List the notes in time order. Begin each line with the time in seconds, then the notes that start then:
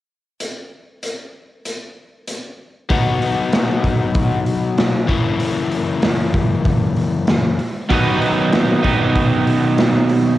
0.40 closed hi-hat
1.03 closed hi-hat
1.65 closed hi-hat
2.28 closed hi-hat
2.89 B2 F#3 B3 D#4 F#4, kick, open hi-hat
3.22 open hi-hat
3.53 snare, open hi-hat
3.84 kick, open hi-hat
4.15 kick, open hi-hat
4.46 open hi-hat
4.78 snare, open hi-hat
5.07 F#2 C#3 E3 A#3 E4, kick, open hi-hat
5.40 open hi-hat
5.71 open hi-hat
6.02 snare, open hi-hat
6.34 kick, open hi-hat
6.65 kick, open hi-hat
6.96 open hi-hat
7.27 snare, open hi-hat
7.59 open hi-hat
7.89 B2 D#3 F#3 B3 D#4, kick, open hi-hat
7.93 B4
8.22 open hi-hat
8.53 snare, open hi-hat
8.83 B2 D#3 F#3 B3 D#4 B4, kick, open hi-hat
9.16 kick, open hi-hat
9.47 open hi-hat
9.78 snare, open hi-hat
10.09 open hi-hat